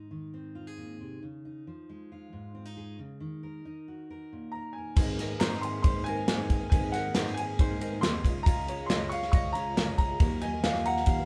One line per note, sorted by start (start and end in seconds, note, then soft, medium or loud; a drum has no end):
0.00 1.19 G#2 medium
0.00 1.26 D#4 soft
0.11 1.66 D#3 soft
0.34 1.19 C4 soft
0.55 0.67 F4 soft
0.67 1.22 G#4 soft
0.77 1.00 A#2 soft
1.00 1.22 C3 soft
1.23 1.67 C#3 medium
1.45 2.54 D#4 soft
1.67 2.97 F3 soft
1.89 3.65 G#3 soft
2.12 2.76 F4 soft
2.33 2.96 G#2 medium
2.55 2.65 C4 soft
2.65 2.99 D#4 soft
2.77 2.96 G#4 medium
2.99 3.18 C#3 medium
3.20 6.72 D#3 medium
3.43 4.09 A#4 medium
3.65 4.94 D#4 medium
3.88 4.95 F#4 soft
4.10 4.54 A#4 medium
4.33 4.95 A#2 medium
4.52 4.76 A#4 medium
4.52 4.75 A#5 medium
4.73 5.36 G#5 medium
4.78 4.96 A#4 soft
4.96 6.69 G#1 medium
4.96 5.34 G#2 loud
4.96 6.68 G#2 medium
4.96 5.18 G#3 medium
4.96 7.55 A#3 medium
4.96 5.18 A#3 medium
4.96 5.16 C4 medium
4.96 7.55 D#4 medium
4.96 5.85 G#4 loud
4.96 7.56 G#4 medium
4.96 5.18 A#4 medium
4.96 7.56 C5 medium
4.96 5.19 D#5 medium
4.96 kick loud
4.96 crash loud
5.00 7.56 D#5 medium
5.18 5.30 A#3 medium
5.18 5.29 C4 medium
5.18 5.29 A#4 medium
5.18 6.07 A#4 medium
5.18 5.27 D#5 medium
5.18 snare soft
5.18 ride medium
5.29 5.39 A#3 soft
5.29 5.39 A#4 medium
5.29 5.39 D#5 medium
5.39 5.77 G#2 medium
5.39 5.99 G#3 medium
5.39 5.95 A#3 medium
5.39 5.94 C4 medium
5.39 5.95 A#4 medium
5.39 5.85 C5 medium
5.39 5.95 D#5 loud
5.39 5.63 A#5 medium
5.39 snare loud
5.39 clap loud
5.39 ride medium
5.52 snare soft
5.61 6.51 G#5 medium
5.61 5.81 C6 medium
5.61 ride medium
5.82 6.03 G#2 loud
5.82 6.73 C5 medium
5.82 6.04 C6 loud
5.82 kick loud
5.82 ride medium
5.95 6.07 A#3 medium
5.95 6.07 A#4 medium
5.95 6.06 D#5 medium
6.04 6.25 G#2 medium
6.04 6.28 A#3 medium
6.04 6.27 C4 medium
6.04 6.68 G#5 loud
6.04 ride medium
6.08 6.94 A#4 medium
6.08 6.28 A#4 medium
6.08 6.28 D#5 medium
6.28 6.65 G#2 loud
6.28 6.50 G#3 medium
6.28 6.49 A#3 medium
6.28 6.48 C4 loud
6.28 6.72 G#4 medium
6.28 6.50 A#4 medium
6.28 6.50 D#5 loud
6.28 snare loud
6.28 clap loud
6.28 ride medium
6.49 6.60 A#3 medium
6.49 6.60 C4 medium
6.49 6.60 A#4 medium
6.49 6.58 D#5 medium
6.49 kick medium
6.49 ride medium
6.59 6.71 A#3 medium
6.59 6.72 A#4 soft
6.59 6.71 D#5 medium
6.70 8.21 G#1 medium
6.70 7.08 G#2 loud
6.70 8.21 G#2 medium
6.70 6.93 G#3 medium
6.70 6.93 A#3 medium
6.70 6.91 C4 medium
6.70 7.60 G#4 loud
6.70 6.94 A#4 medium
6.70 6.94 D#5 medium
6.70 6.93 G#5 medium
6.70 kick loud
6.70 ride loud
6.92 7.05 A#3 medium
6.92 7.04 C4 medium
6.92 7.80 A#4 medium
6.92 7.04 A#4 medium
6.92 7.03 D#5 medium
6.92 7.33 F#5 loud
6.92 snare soft
6.92 ride medium
7.04 7.14 A#3 soft
7.04 7.15 A#4 medium
7.04 7.15 D#5 medium
7.14 7.53 G#2 loud
7.14 7.69 G#3 medium
7.14 7.70 A#3 medium
7.14 7.70 C4 medium
7.14 7.68 A#4 medium
7.14 7.59 C5 medium
7.14 7.68 D#5 loud
7.14 snare loud
7.14 clap loud
7.14 ride medium
7.26 snare soft
7.34 7.97 G#5 loud
7.34 ride medium
7.39 8.25 G#5 medium
7.58 7.78 G#2 loud
7.58 8.24 A#3 medium
7.58 8.23 D#4 soft
7.58 8.24 G#4 soft
7.58 8.25 C5 soft
7.58 8.25 C5 loud
7.58 8.25 D#5 medium
7.58 kick loud
7.58 ride medium
7.69 7.79 A#3 soft
7.69 7.80 A#4 medium
7.69 7.80 D#5 medium
7.80 7.99 G#2 loud
7.80 7.91 A#3 medium
7.80 7.91 C4 medium
7.80 7.90 A#4 medium
7.80 8.25 A#4 medium
7.80 7.89 D#5 medium
7.80 ride medium
7.90 8.02 A#3 soft
7.90 8.02 A#4 soft
7.90 8.02 D#5 soft
8.01 8.20 D#2 loud
8.01 8.24 G#3 medium
8.01 8.24 A#3 medium
8.01 8.23 C4 medium
8.01 8.25 G#4 medium
8.01 8.25 A#4 loud
8.01 8.25 D#5 loud
8.01 8.42 C6 loud
8.01 snare loud
8.01 clap loud
8.01 ride loud
8.23 8.80 C#2 loud
8.23 9.95 C#2 medium
8.23 9.95 C#3 medium
8.23 10.16 G#3 medium
8.23 8.35 C#4 medium
8.23 10.16 D#4 medium
8.23 8.35 F4 medium
8.23 10.17 F4 medium
8.23 8.34 G#4 medium
8.23 10.17 C#5 medium
8.23 8.32 D#5 medium
8.23 10.18 D#5 medium
8.23 kick medium
8.23 ride medium
8.33 8.44 F4 medium
8.33 8.45 G#4 medium
8.33 8.45 D#5 medium
8.43 8.65 C#4 medium
8.43 8.66 F4 medium
8.43 9.34 F4 loud
8.43 8.67 G#4 medium
8.43 8.68 D#5 medium
8.43 8.85 A#5 loud
8.43 kick loud
8.47 ride loud
8.66 8.78 C#4 medium
8.66 8.79 F4 medium
8.66 8.79 G#4 medium
8.66 9.55 C#5 medium
8.66 8.78 D#5 medium
8.66 ride medium
8.79 8.88 F4 soft
8.79 8.89 G#4 medium
8.79 8.89 D#5 medium
8.86 9.26 C#2 medium
8.86 9.22 C#4 medium
8.86 9.22 F4 medium
8.86 9.22 G#4 medium
8.86 9.08 C6 medium
8.86 snare loud
8.86 ride medium
8.91 9.20 D#5 medium
8.91 9.33 D#5 medium
8.91 clap loud
9.09 9.99 F5 medium
9.09 9.30 C#6 loud
9.09 ride medium
9.22 9.43 F4 soft
9.22 9.42 G#4 soft
9.22 9.41 D#5 medium
9.22 snare soft
9.32 9.52 C#2 loud
9.32 10.21 D#5 loud
9.32 9.55 C#6 loud
9.32 kick loud
9.32 ride medium
9.42 9.52 F4 medium
9.42 9.52 G#4 medium
9.42 9.54 D#5 medium
9.52 9.74 C#2 loud
9.52 9.73 C#4 medium
9.52 9.74 F4 medium
9.52 9.75 G#4 medium
9.52 9.75 D#5 medium
9.52 9.96 A#5 loud
9.52 ride medium
9.56 10.21 C#5 medium
9.74 10.14 C#2 loud
9.74 9.94 C#4 medium
9.74 9.96 F4 medium
9.74 10.21 F4 medium
9.74 9.96 G#4 medium
9.74 9.97 D#5 loud
9.74 snare loud
9.74 clap loud
9.74 ride medium
9.96 10.08 C#4 medium
9.96 10.09 F4 medium
9.96 10.09 G#4 medium
9.96 10.06 D#5 medium
9.96 10.43 A#5 loud
9.96 kick medium
9.96 ride medium
10.08 10.19 F4 soft
10.08 10.19 G#4 medium
10.08 10.19 D#5 medium
10.19 10.57 D#2 loud
10.19 11.25 D#2 medium
10.19 10.41 D#3 medium
10.19 11.25 D#3 medium
10.19 10.40 F3 medium
10.19 11.25 F3 medium
10.19 11.25 F#3 medium
10.19 10.42 F#3 medium
10.19 10.41 A#3 loud
10.19 11.25 D#4 medium
10.19 10.42 A#4 medium
10.19 11.25 A#4 medium
10.19 10.43 D#5 medium
10.19 kick loud
10.19 ride medium
10.23 11.25 D#5 medium
10.41 10.53 F3 medium
10.41 10.53 A#3 medium
10.41 10.52 A#4 medium
10.41 11.25 D#5 medium
10.41 10.51 D#5 medium
10.41 10.87 G#5 loud
10.41 ride medium
10.52 10.64 F3 soft
10.52 10.64 A#3 medium
10.52 10.64 A#4 medium
10.52 10.64 D#5 medium
10.64 11.01 D#2 medium
10.64 11.18 D#3 medium
10.64 11.19 F3 medium
10.64 11.18 F#3 medium
10.64 11.20 A#3 medium
10.64 11.19 A#4 medium
10.64 11.19 D#5 loud
10.64 11.07 F5 medium
10.64 snare loud
10.64 clap loud
10.64 ride medium
10.75 snare soft
10.85 11.25 F#5 medium
10.85 11.25 A#5 loud
10.85 ride medium
10.97 snare soft
11.06 11.25 D#2 loud
11.06 11.25 F5 medium
11.06 kick loud
11.06 ride medium
11.19 11.25 F3 soft
11.19 11.25 A#3 soft
11.19 11.25 A#4 medium
11.19 11.25 D#5 medium